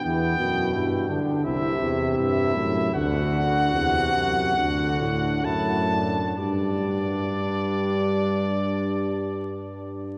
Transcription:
<<
  \new Staff \with { instrumentName = "Trumpet" } { \time 4/4 \key g \major \tempo 4 = 71 g''4. r8 e''4 e''4 | fis''2. a''4 | d''1 | }
  \new Staff \with { instrumentName = "Flugelhorn" } { \time 4/4 \key g \major b4 e'8 d'8 e'8 r8 e'4 | fis'2 fis'4 e'8 d'8 | d'1 | }
  \new Staff \with { instrumentName = "Euphonium" } { \clef bass \time 4/4 \key g \major e8 b,4 d8 c4. a,8 | d4 c4 d4 a,4 | g1 | }
  \new Staff \with { instrumentName = "Bass trombone" } { \clef bass \time 4/4 \key g \major e,8 fis,8 g,8 r8 c,8 e,8 g,8 fis,8 | d,4 e,8 fis,8 d,8 a,8 fis,4 | g,1 | }
>>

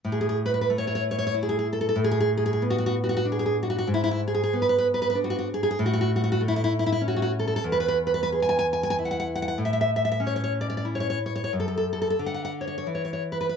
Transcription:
\new Staff \with { instrumentName = "Nylon-string guitar" } { \time 3/4 \key a \major \tempo 4 = 94 << { r32 gis'32 gis'32 gis'32 r32 b'32 b'32 b'32 r32 cis''32 cis''32 cis''32 r32 cis''32 cis''32 cis''32 r32 gis'32 gis'32 gis'32 r32 a'32 a'32 a'32 | r32 gis'32 gis'32 gis'32 r32 gis'32 gis'32 gis'32 r32 fis'32 fis'32 fis'32 r32 fis'32 fis'32 fis'32 r32 gis'32 gis'32 gis'32 r32 fis'32 fis'32 fis'32 | r32 e'32 e'32 e'32 r32 gis'32 gis'32 gis'32 r32 b'32 b'32 b'32 r32 b'32 b'32 b'32 r32 fis'32 fis'32 fis'32 r32 gis'32 gis'32 gis'32 | r32 fis'32 fis'32 fis'32 r32 fis'32 fis'32 fis'32 r32 e'32 e'32 e'32 r32 e'32 e'32 e'32 r32 fis'32 fis'32 fis'32 r32 a'32 a'32 a'32 |
r32 b'32 b'32 b'32 r32 b'32 b'32 b'32 r32 gis''32 gis''32 gis''32 r32 gis''32 gis''32 gis''32 r32 fis''32 fis''32 fis''32 r32 fis''32 fis''32 fis''32 | r32 e''32 e''32 e''32 r32 e''32 e''32 e''32 r32 cis''32 cis''32 cis''32 r32 d''32 d''32 d''32 r32 cis''32 cis''32 cis''32 r32 cis''32 cis''32 cis''32 | r32 a'32 a'32 a'32 r32 a'32 a'32 a'32 r32 fis''32 fis''32 fis''32 r32 cis''32 cis''32 cis''32 r32 cis''32 cis''32 cis''32 r32 b'32 b'32 b'32 | } \\ { a,4 a4 e'4 | a,4 b4 d'4 | gis,4 b4 d'4 | a,4 a4 cis'4 |
e,4 gis'4 e'4 | a,4 cis'4 e'4 | fis,4 d4 e4 | } >> }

